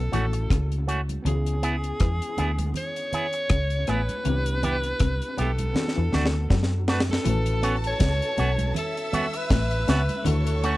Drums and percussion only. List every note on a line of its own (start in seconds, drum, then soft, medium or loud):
0.13 closed hi-hat medium
0.13 low conga medium
0.33 closed hi-hat soft
0.50 kick loud
0.50 cross-stick loud
0.50 closed hi-hat medium
0.50 high conga soft
0.72 closed hi-hat soft
0.89 closed hi-hat medium
1.09 closed hi-hat soft
1.09 high conga soft
1.26 closed hi-hat medium
1.26 low conga medium
1.46 closed hi-hat medium
1.63 closed hi-hat medium
1.84 closed hi-hat soft
2.00 kick loud
2.00 cross-stick loud
2.00 closed hi-hat medium
2.00 high conga soft
2.22 closed hi-hat medium
2.37 closed hi-hat medium
2.37 high conga soft
2.59 closed hi-hat medium
2.59 high conga medium
2.74 closed hi-hat medium
2.74 low conga medium
2.96 closed hi-hat soft
3.13 closed hi-hat medium
3.13 low conga medium
3.33 closed hi-hat soft
3.49 kick loud
3.49 cross-stick loud
3.49 closed hi-hat medium
3.49 high conga soft
3.70 closed hi-hat soft
3.87 cross-stick medium
3.87 closed hi-hat medium
4.09 closed hi-hat soft
4.09 high conga soft
4.25 closed hi-hat medium
4.25 low conga medium
4.46 closed hi-hat medium
4.63 closed hi-hat medium
4.63 low conga medium
4.83 closed hi-hat soft
5.00 kick loud
5.00 cross-stick loud
5.00 closed hi-hat medium
5.00 high conga soft
5.22 closed hi-hat soft
5.38 closed hi-hat medium
5.38 high conga soft
5.58 closed hi-hat medium
5.58 high conga medium
5.74 snare medium
5.74 low conga medium
5.88 snare soft
6.13 snare medium
6.13 low conga medium
6.26 snare medium
6.50 kick loud
6.50 snare medium
6.50 high conga soft
6.63 snare medium
6.88 snare medium
7.00 snare medium
7.10 snare medium
7.10 high conga soft
7.25 closed hi-hat medium
7.25 low conga medium
7.46 closed hi-hat medium
7.63 closed hi-hat medium
7.84 closed hi-hat soft
8.00 kick loud
8.00 snare loud
8.00 closed hi-hat loud
8.00 high conga soft
8.22 closed hi-hat medium
8.37 closed hi-hat medium
8.37 high conga soft
8.58 closed hi-hat medium
8.58 high conga medium
8.75 closed hi-hat medium
8.75 low conga medium
8.97 closed hi-hat soft
9.13 closed hi-hat medium
9.13 high conga medium
9.13 low conga medium
9.33 closed hi-hat soft
9.50 kick loud
9.50 snare loud
9.50 closed hi-hat loud
9.50 high conga medium
9.71 closed hi-hat soft
9.88 snare medium
9.88 closed hi-hat medium
10.09 closed hi-hat soft
10.09 high conga soft
10.25 closed hi-hat medium
10.25 low conga medium
10.47 closed hi-hat medium
10.64 closed hi-hat medium